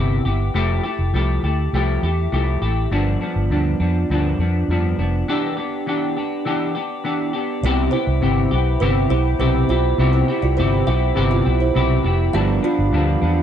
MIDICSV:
0, 0, Header, 1, 5, 480
1, 0, Start_track
1, 0, Key_signature, 0, "major"
1, 0, Tempo, 589391
1, 446, Time_signature, 4, 2, 24, 8
1, 10934, End_track
2, 0, Start_track
2, 0, Title_t, "Ambient pad"
2, 0, Program_c, 0, 92
2, 6218, Note_on_c, 0, 64, 81
2, 6218, Note_on_c, 0, 72, 71
2, 6223, Note_on_c, 0, 83, 91
2, 10017, Note_off_c, 0, 64, 0
2, 10017, Note_off_c, 0, 72, 0
2, 10044, Note_on_c, 0, 67, 80
2, 10046, Note_on_c, 0, 77, 71
2, 10934, Note_off_c, 0, 67, 0
2, 10934, Note_off_c, 0, 77, 0
2, 10934, Note_off_c, 0, 83, 0
2, 10934, End_track
3, 0, Start_track
3, 0, Title_t, "Kalimba"
3, 0, Program_c, 1, 108
3, 6218, Note_on_c, 1, 74, 91
3, 6226, Note_on_c, 1, 67, 72
3, 6443, Note_on_c, 1, 72, 83
3, 6446, Note_off_c, 1, 74, 0
3, 6450, Note_off_c, 1, 67, 0
3, 6453, Note_on_c, 1, 64, 65
3, 6900, Note_off_c, 1, 72, 0
3, 6906, Note_off_c, 1, 64, 0
3, 7169, Note_on_c, 1, 71, 87
3, 7179, Note_on_c, 1, 64, 66
3, 7400, Note_off_c, 1, 71, 0
3, 7406, Note_off_c, 1, 64, 0
3, 7414, Note_on_c, 1, 72, 85
3, 7418, Note_on_c, 1, 64, 61
3, 7529, Note_off_c, 1, 72, 0
3, 7531, Note_off_c, 1, 64, 0
3, 7652, Note_on_c, 1, 71, 82
3, 7655, Note_on_c, 1, 64, 62
3, 7768, Note_off_c, 1, 71, 0
3, 7769, Note_off_c, 1, 64, 0
3, 7893, Note_on_c, 1, 74, 81
3, 7901, Note_on_c, 1, 65, 62
3, 8008, Note_off_c, 1, 74, 0
3, 8012, Note_off_c, 1, 65, 0
3, 8251, Note_on_c, 1, 72, 69
3, 8260, Note_on_c, 1, 64, 53
3, 8366, Note_off_c, 1, 72, 0
3, 8371, Note_off_c, 1, 64, 0
3, 8489, Note_on_c, 1, 74, 75
3, 8496, Note_on_c, 1, 65, 57
3, 8605, Note_off_c, 1, 74, 0
3, 8607, Note_on_c, 1, 72, 83
3, 8609, Note_off_c, 1, 65, 0
3, 8612, Note_on_c, 1, 64, 66
3, 8837, Note_off_c, 1, 72, 0
3, 8840, Note_off_c, 1, 64, 0
3, 8852, Note_on_c, 1, 76, 86
3, 8862, Note_on_c, 1, 67, 67
3, 8966, Note_off_c, 1, 76, 0
3, 8971, Note_off_c, 1, 67, 0
3, 9210, Note_on_c, 1, 74, 76
3, 9217, Note_on_c, 1, 65, 56
3, 9325, Note_off_c, 1, 74, 0
3, 9328, Note_off_c, 1, 65, 0
3, 9450, Note_on_c, 1, 72, 70
3, 9462, Note_on_c, 1, 64, 52
3, 9678, Note_off_c, 1, 72, 0
3, 9684, Note_off_c, 1, 64, 0
3, 10045, Note_on_c, 1, 76, 90
3, 10055, Note_on_c, 1, 67, 77
3, 10274, Note_off_c, 1, 76, 0
3, 10279, Note_off_c, 1, 67, 0
3, 10295, Note_on_c, 1, 74, 89
3, 10299, Note_on_c, 1, 65, 70
3, 10742, Note_off_c, 1, 74, 0
3, 10744, Note_off_c, 1, 65, 0
3, 10934, End_track
4, 0, Start_track
4, 0, Title_t, "Clean electric guitar"
4, 0, Program_c, 2, 27
4, 0, Note_on_c, 2, 48, 61
4, 0, Note_on_c, 2, 59, 58
4, 0, Note_on_c, 2, 64, 57
4, 0, Note_on_c, 2, 67, 64
4, 194, Note_off_c, 2, 67, 0
4, 201, Note_off_c, 2, 64, 0
4, 204, Note_on_c, 2, 67, 52
4, 206, Note_off_c, 2, 48, 0
4, 210, Note_off_c, 2, 59, 0
4, 210, Note_on_c, 2, 64, 51
4, 221, Note_on_c, 2, 59, 42
4, 441, Note_off_c, 2, 64, 0
4, 442, Note_on_c, 2, 53, 76
4, 444, Note_off_c, 2, 67, 0
4, 446, Note_off_c, 2, 59, 0
4, 450, Note_on_c, 2, 57, 88
4, 451, Note_on_c, 2, 64, 83
4, 453, Note_on_c, 2, 67, 87
4, 670, Note_off_c, 2, 67, 0
4, 680, Note_on_c, 2, 67, 51
4, 683, Note_off_c, 2, 64, 0
4, 685, Note_off_c, 2, 53, 0
4, 689, Note_off_c, 2, 57, 0
4, 693, Note_on_c, 2, 64, 48
4, 700, Note_on_c, 2, 57, 43
4, 921, Note_off_c, 2, 57, 0
4, 924, Note_off_c, 2, 67, 0
4, 926, Note_on_c, 2, 53, 59
4, 931, Note_off_c, 2, 64, 0
4, 931, Note_on_c, 2, 57, 61
4, 940, Note_on_c, 2, 64, 57
4, 945, Note_on_c, 2, 67, 61
4, 1161, Note_off_c, 2, 67, 0
4, 1168, Note_off_c, 2, 53, 0
4, 1168, Note_off_c, 2, 64, 0
4, 1170, Note_off_c, 2, 57, 0
4, 1171, Note_on_c, 2, 67, 52
4, 1178, Note_on_c, 2, 64, 51
4, 1184, Note_on_c, 2, 57, 43
4, 1407, Note_off_c, 2, 57, 0
4, 1410, Note_off_c, 2, 67, 0
4, 1412, Note_off_c, 2, 64, 0
4, 1417, Note_on_c, 2, 53, 82
4, 1417, Note_on_c, 2, 57, 76
4, 1422, Note_on_c, 2, 64, 80
4, 1426, Note_on_c, 2, 67, 84
4, 1646, Note_off_c, 2, 67, 0
4, 1653, Note_off_c, 2, 64, 0
4, 1654, Note_off_c, 2, 53, 0
4, 1654, Note_off_c, 2, 57, 0
4, 1655, Note_on_c, 2, 67, 53
4, 1663, Note_on_c, 2, 64, 50
4, 1671, Note_on_c, 2, 57, 43
4, 1882, Note_off_c, 2, 57, 0
4, 1891, Note_off_c, 2, 64, 0
4, 1891, Note_on_c, 2, 53, 62
4, 1892, Note_on_c, 2, 57, 62
4, 1893, Note_off_c, 2, 67, 0
4, 1901, Note_on_c, 2, 64, 64
4, 1903, Note_on_c, 2, 67, 68
4, 2122, Note_off_c, 2, 67, 0
4, 2131, Note_off_c, 2, 53, 0
4, 2132, Note_off_c, 2, 57, 0
4, 2132, Note_off_c, 2, 64, 0
4, 2132, Note_on_c, 2, 67, 58
4, 2142, Note_on_c, 2, 64, 48
4, 2150, Note_on_c, 2, 57, 47
4, 2372, Note_off_c, 2, 67, 0
4, 2372, Note_on_c, 2, 43, 74
4, 2375, Note_on_c, 2, 53, 79
4, 2377, Note_off_c, 2, 57, 0
4, 2377, Note_off_c, 2, 64, 0
4, 2380, Note_on_c, 2, 59, 85
4, 2383, Note_on_c, 2, 62, 88
4, 2602, Note_off_c, 2, 62, 0
4, 2611, Note_on_c, 2, 62, 55
4, 2612, Note_off_c, 2, 59, 0
4, 2613, Note_off_c, 2, 43, 0
4, 2614, Note_off_c, 2, 53, 0
4, 2621, Note_on_c, 2, 59, 55
4, 2631, Note_on_c, 2, 53, 44
4, 2850, Note_off_c, 2, 53, 0
4, 2852, Note_on_c, 2, 43, 57
4, 2853, Note_off_c, 2, 62, 0
4, 2855, Note_off_c, 2, 59, 0
4, 2860, Note_on_c, 2, 53, 58
4, 2865, Note_on_c, 2, 59, 63
4, 2866, Note_on_c, 2, 62, 62
4, 3085, Note_off_c, 2, 62, 0
4, 3093, Note_off_c, 2, 43, 0
4, 3095, Note_on_c, 2, 62, 61
4, 3097, Note_off_c, 2, 53, 0
4, 3097, Note_off_c, 2, 59, 0
4, 3107, Note_on_c, 2, 59, 49
4, 3112, Note_on_c, 2, 53, 46
4, 3335, Note_off_c, 2, 62, 0
4, 3340, Note_off_c, 2, 53, 0
4, 3341, Note_off_c, 2, 59, 0
4, 3343, Note_on_c, 2, 43, 73
4, 3350, Note_on_c, 2, 53, 81
4, 3351, Note_on_c, 2, 59, 85
4, 3356, Note_on_c, 2, 62, 86
4, 3575, Note_off_c, 2, 62, 0
4, 3579, Note_off_c, 2, 43, 0
4, 3581, Note_off_c, 2, 59, 0
4, 3583, Note_off_c, 2, 53, 0
4, 3584, Note_on_c, 2, 62, 51
4, 3590, Note_on_c, 2, 59, 45
4, 3597, Note_on_c, 2, 53, 43
4, 3820, Note_off_c, 2, 62, 0
4, 3822, Note_off_c, 2, 53, 0
4, 3823, Note_off_c, 2, 59, 0
4, 3824, Note_on_c, 2, 43, 61
4, 3832, Note_on_c, 2, 53, 67
4, 3839, Note_on_c, 2, 59, 60
4, 3839, Note_on_c, 2, 62, 65
4, 4052, Note_off_c, 2, 62, 0
4, 4059, Note_off_c, 2, 59, 0
4, 4060, Note_off_c, 2, 43, 0
4, 4062, Note_on_c, 2, 62, 56
4, 4064, Note_off_c, 2, 53, 0
4, 4069, Note_on_c, 2, 59, 51
4, 4081, Note_on_c, 2, 53, 45
4, 4295, Note_off_c, 2, 59, 0
4, 4299, Note_off_c, 2, 62, 0
4, 4300, Note_off_c, 2, 53, 0
4, 4304, Note_on_c, 2, 52, 77
4, 4305, Note_on_c, 2, 59, 80
4, 4312, Note_on_c, 2, 67, 88
4, 4315, Note_on_c, 2, 62, 86
4, 4524, Note_off_c, 2, 67, 0
4, 4534, Note_on_c, 2, 67, 52
4, 4535, Note_off_c, 2, 62, 0
4, 4540, Note_off_c, 2, 52, 0
4, 4541, Note_off_c, 2, 59, 0
4, 4545, Note_on_c, 2, 62, 49
4, 4549, Note_on_c, 2, 59, 50
4, 4772, Note_off_c, 2, 59, 0
4, 4776, Note_off_c, 2, 67, 0
4, 4776, Note_on_c, 2, 52, 61
4, 4781, Note_off_c, 2, 62, 0
4, 4782, Note_on_c, 2, 59, 61
4, 4791, Note_on_c, 2, 62, 66
4, 4794, Note_on_c, 2, 67, 69
4, 5011, Note_off_c, 2, 67, 0
4, 5017, Note_off_c, 2, 52, 0
4, 5020, Note_off_c, 2, 59, 0
4, 5020, Note_on_c, 2, 67, 51
4, 5021, Note_off_c, 2, 62, 0
4, 5030, Note_on_c, 2, 62, 50
4, 5040, Note_on_c, 2, 59, 43
4, 5250, Note_off_c, 2, 59, 0
4, 5254, Note_on_c, 2, 52, 77
4, 5255, Note_off_c, 2, 62, 0
4, 5257, Note_off_c, 2, 67, 0
4, 5259, Note_on_c, 2, 59, 74
4, 5265, Note_on_c, 2, 62, 78
4, 5266, Note_on_c, 2, 67, 77
4, 5486, Note_off_c, 2, 67, 0
4, 5496, Note_off_c, 2, 52, 0
4, 5496, Note_on_c, 2, 67, 51
4, 5499, Note_off_c, 2, 59, 0
4, 5499, Note_off_c, 2, 62, 0
4, 5508, Note_on_c, 2, 62, 43
4, 5516, Note_on_c, 2, 59, 40
4, 5730, Note_off_c, 2, 59, 0
4, 5731, Note_off_c, 2, 62, 0
4, 5734, Note_on_c, 2, 52, 61
4, 5737, Note_off_c, 2, 67, 0
4, 5739, Note_on_c, 2, 59, 65
4, 5741, Note_on_c, 2, 62, 60
4, 5750, Note_on_c, 2, 67, 60
4, 5961, Note_off_c, 2, 67, 0
4, 5971, Note_on_c, 2, 67, 54
4, 5975, Note_off_c, 2, 62, 0
4, 5976, Note_off_c, 2, 52, 0
4, 5979, Note_off_c, 2, 59, 0
4, 5984, Note_on_c, 2, 62, 51
4, 5994, Note_on_c, 2, 59, 44
4, 6214, Note_off_c, 2, 67, 0
4, 6221, Note_off_c, 2, 62, 0
4, 6222, Note_off_c, 2, 59, 0
4, 6225, Note_on_c, 2, 48, 84
4, 6231, Note_on_c, 2, 59, 93
4, 6235, Note_on_c, 2, 64, 91
4, 6237, Note_on_c, 2, 67, 86
4, 6446, Note_off_c, 2, 67, 0
4, 6456, Note_off_c, 2, 64, 0
4, 6456, Note_on_c, 2, 67, 61
4, 6461, Note_off_c, 2, 48, 0
4, 6463, Note_off_c, 2, 59, 0
4, 6466, Note_on_c, 2, 64, 50
4, 6472, Note_on_c, 2, 59, 52
4, 6686, Note_off_c, 2, 59, 0
4, 6687, Note_on_c, 2, 48, 66
4, 6690, Note_off_c, 2, 64, 0
4, 6695, Note_on_c, 2, 59, 65
4, 6696, Note_off_c, 2, 67, 0
4, 6700, Note_on_c, 2, 64, 72
4, 6707, Note_on_c, 2, 67, 72
4, 6921, Note_off_c, 2, 67, 0
4, 6931, Note_on_c, 2, 67, 63
4, 6932, Note_off_c, 2, 48, 0
4, 6932, Note_off_c, 2, 64, 0
4, 6936, Note_off_c, 2, 59, 0
4, 6942, Note_on_c, 2, 64, 54
4, 6951, Note_on_c, 2, 59, 52
4, 7171, Note_off_c, 2, 59, 0
4, 7174, Note_off_c, 2, 64, 0
4, 7174, Note_off_c, 2, 67, 0
4, 7177, Note_on_c, 2, 48, 79
4, 7181, Note_on_c, 2, 59, 79
4, 7184, Note_on_c, 2, 64, 90
4, 7186, Note_on_c, 2, 67, 89
4, 7404, Note_off_c, 2, 67, 0
4, 7410, Note_off_c, 2, 64, 0
4, 7414, Note_on_c, 2, 67, 57
4, 7416, Note_off_c, 2, 48, 0
4, 7418, Note_off_c, 2, 59, 0
4, 7420, Note_on_c, 2, 64, 49
4, 7430, Note_on_c, 2, 59, 50
4, 7644, Note_off_c, 2, 59, 0
4, 7649, Note_on_c, 2, 48, 71
4, 7652, Note_off_c, 2, 64, 0
4, 7653, Note_on_c, 2, 59, 65
4, 7655, Note_off_c, 2, 67, 0
4, 7662, Note_on_c, 2, 64, 69
4, 7663, Note_on_c, 2, 67, 74
4, 7891, Note_off_c, 2, 67, 0
4, 7892, Note_off_c, 2, 48, 0
4, 7894, Note_off_c, 2, 59, 0
4, 7898, Note_off_c, 2, 64, 0
4, 7901, Note_on_c, 2, 67, 65
4, 7908, Note_on_c, 2, 64, 52
4, 7915, Note_on_c, 2, 59, 48
4, 8128, Note_off_c, 2, 59, 0
4, 8131, Note_on_c, 2, 48, 90
4, 8132, Note_off_c, 2, 64, 0
4, 8137, Note_off_c, 2, 67, 0
4, 8138, Note_on_c, 2, 59, 82
4, 8141, Note_on_c, 2, 64, 92
4, 8148, Note_on_c, 2, 67, 95
4, 8364, Note_off_c, 2, 67, 0
4, 8372, Note_off_c, 2, 48, 0
4, 8374, Note_on_c, 2, 67, 60
4, 8375, Note_off_c, 2, 59, 0
4, 8377, Note_off_c, 2, 64, 0
4, 8386, Note_on_c, 2, 64, 56
4, 8396, Note_on_c, 2, 59, 52
4, 8609, Note_off_c, 2, 59, 0
4, 8611, Note_on_c, 2, 48, 64
4, 8613, Note_off_c, 2, 67, 0
4, 8616, Note_off_c, 2, 64, 0
4, 8619, Note_on_c, 2, 59, 69
4, 8626, Note_on_c, 2, 64, 72
4, 8629, Note_on_c, 2, 67, 76
4, 8842, Note_off_c, 2, 67, 0
4, 8851, Note_off_c, 2, 64, 0
4, 8851, Note_on_c, 2, 67, 64
4, 8852, Note_off_c, 2, 48, 0
4, 8855, Note_off_c, 2, 59, 0
4, 8861, Note_on_c, 2, 64, 62
4, 8870, Note_on_c, 2, 59, 48
4, 9077, Note_off_c, 2, 59, 0
4, 9079, Note_off_c, 2, 64, 0
4, 9082, Note_on_c, 2, 48, 79
4, 9086, Note_off_c, 2, 67, 0
4, 9087, Note_on_c, 2, 59, 82
4, 9089, Note_on_c, 2, 64, 81
4, 9096, Note_on_c, 2, 67, 94
4, 9312, Note_off_c, 2, 67, 0
4, 9321, Note_on_c, 2, 67, 54
4, 9322, Note_off_c, 2, 64, 0
4, 9326, Note_off_c, 2, 48, 0
4, 9329, Note_off_c, 2, 59, 0
4, 9332, Note_on_c, 2, 64, 51
4, 9338, Note_on_c, 2, 59, 47
4, 9560, Note_off_c, 2, 59, 0
4, 9563, Note_on_c, 2, 48, 61
4, 9566, Note_off_c, 2, 67, 0
4, 9568, Note_off_c, 2, 64, 0
4, 9570, Note_on_c, 2, 59, 68
4, 9577, Note_on_c, 2, 64, 75
4, 9581, Note_on_c, 2, 67, 72
4, 9797, Note_off_c, 2, 67, 0
4, 9806, Note_off_c, 2, 48, 0
4, 9807, Note_on_c, 2, 67, 60
4, 9808, Note_off_c, 2, 64, 0
4, 9810, Note_off_c, 2, 59, 0
4, 9818, Note_on_c, 2, 64, 60
4, 9822, Note_on_c, 2, 59, 49
4, 10041, Note_off_c, 2, 59, 0
4, 10041, Note_on_c, 2, 43, 91
4, 10046, Note_on_c, 2, 53, 86
4, 10047, Note_off_c, 2, 67, 0
4, 10049, Note_off_c, 2, 64, 0
4, 10050, Note_on_c, 2, 59, 94
4, 10053, Note_on_c, 2, 62, 96
4, 10271, Note_off_c, 2, 62, 0
4, 10280, Note_off_c, 2, 59, 0
4, 10281, Note_on_c, 2, 62, 65
4, 10284, Note_off_c, 2, 43, 0
4, 10287, Note_off_c, 2, 53, 0
4, 10290, Note_on_c, 2, 59, 51
4, 10295, Note_on_c, 2, 53, 54
4, 10517, Note_off_c, 2, 53, 0
4, 10523, Note_off_c, 2, 59, 0
4, 10523, Note_on_c, 2, 43, 65
4, 10524, Note_off_c, 2, 62, 0
4, 10527, Note_on_c, 2, 53, 69
4, 10533, Note_on_c, 2, 59, 69
4, 10539, Note_on_c, 2, 62, 80
4, 10751, Note_off_c, 2, 62, 0
4, 10761, Note_on_c, 2, 62, 60
4, 10762, Note_off_c, 2, 59, 0
4, 10765, Note_off_c, 2, 43, 0
4, 10767, Note_off_c, 2, 53, 0
4, 10772, Note_on_c, 2, 59, 57
4, 10776, Note_on_c, 2, 53, 49
4, 10934, Note_off_c, 2, 53, 0
4, 10934, Note_off_c, 2, 59, 0
4, 10934, Note_off_c, 2, 62, 0
4, 10934, End_track
5, 0, Start_track
5, 0, Title_t, "Fingered electric bass"
5, 0, Program_c, 3, 33
5, 0, Note_on_c, 3, 31, 85
5, 156, Note_off_c, 3, 31, 0
5, 208, Note_on_c, 3, 31, 86
5, 400, Note_off_c, 3, 31, 0
5, 444, Note_on_c, 3, 29, 91
5, 638, Note_off_c, 3, 29, 0
5, 804, Note_on_c, 3, 29, 82
5, 901, Note_off_c, 3, 29, 0
5, 925, Note_on_c, 3, 36, 83
5, 1118, Note_off_c, 3, 36, 0
5, 1165, Note_on_c, 3, 38, 76
5, 1359, Note_off_c, 3, 38, 0
5, 1410, Note_on_c, 3, 36, 85
5, 1602, Note_off_c, 3, 36, 0
5, 1650, Note_on_c, 3, 40, 76
5, 1842, Note_off_c, 3, 40, 0
5, 1893, Note_on_c, 3, 36, 83
5, 2084, Note_off_c, 3, 36, 0
5, 2130, Note_on_c, 3, 33, 88
5, 2323, Note_off_c, 3, 33, 0
5, 2371, Note_on_c, 3, 31, 92
5, 2564, Note_off_c, 3, 31, 0
5, 2734, Note_on_c, 3, 31, 90
5, 2830, Note_off_c, 3, 31, 0
5, 2851, Note_on_c, 3, 38, 80
5, 3045, Note_off_c, 3, 38, 0
5, 3094, Note_on_c, 3, 41, 78
5, 3286, Note_off_c, 3, 41, 0
5, 3340, Note_on_c, 3, 38, 86
5, 3530, Note_off_c, 3, 38, 0
5, 3573, Note_on_c, 3, 41, 80
5, 3766, Note_off_c, 3, 41, 0
5, 3815, Note_on_c, 3, 41, 98
5, 4007, Note_off_c, 3, 41, 0
5, 4057, Note_on_c, 3, 29, 82
5, 4249, Note_off_c, 3, 29, 0
5, 6215, Note_on_c, 3, 36, 107
5, 6408, Note_off_c, 3, 36, 0
5, 6573, Note_on_c, 3, 36, 89
5, 6671, Note_off_c, 3, 36, 0
5, 6692, Note_on_c, 3, 31, 84
5, 6886, Note_off_c, 3, 31, 0
5, 6940, Note_on_c, 3, 35, 86
5, 7130, Note_off_c, 3, 35, 0
5, 7173, Note_on_c, 3, 31, 92
5, 7366, Note_off_c, 3, 31, 0
5, 7411, Note_on_c, 3, 35, 94
5, 7605, Note_off_c, 3, 35, 0
5, 7649, Note_on_c, 3, 35, 90
5, 7843, Note_off_c, 3, 35, 0
5, 7892, Note_on_c, 3, 35, 95
5, 8085, Note_off_c, 3, 35, 0
5, 8130, Note_on_c, 3, 36, 106
5, 8323, Note_off_c, 3, 36, 0
5, 8493, Note_on_c, 3, 36, 93
5, 8613, Note_on_c, 3, 31, 86
5, 8625, Note_off_c, 3, 36, 0
5, 8805, Note_off_c, 3, 31, 0
5, 8853, Note_on_c, 3, 35, 87
5, 9044, Note_off_c, 3, 35, 0
5, 9094, Note_on_c, 3, 31, 85
5, 9284, Note_off_c, 3, 31, 0
5, 9337, Note_on_c, 3, 35, 93
5, 9526, Note_off_c, 3, 35, 0
5, 9574, Note_on_c, 3, 35, 90
5, 9764, Note_off_c, 3, 35, 0
5, 9815, Note_on_c, 3, 29, 91
5, 10004, Note_off_c, 3, 29, 0
5, 10053, Note_on_c, 3, 31, 108
5, 10243, Note_off_c, 3, 31, 0
5, 10412, Note_on_c, 3, 31, 95
5, 10506, Note_off_c, 3, 31, 0
5, 10525, Note_on_c, 3, 38, 96
5, 10718, Note_off_c, 3, 38, 0
5, 10766, Note_on_c, 3, 40, 94
5, 10934, Note_off_c, 3, 40, 0
5, 10934, End_track
0, 0, End_of_file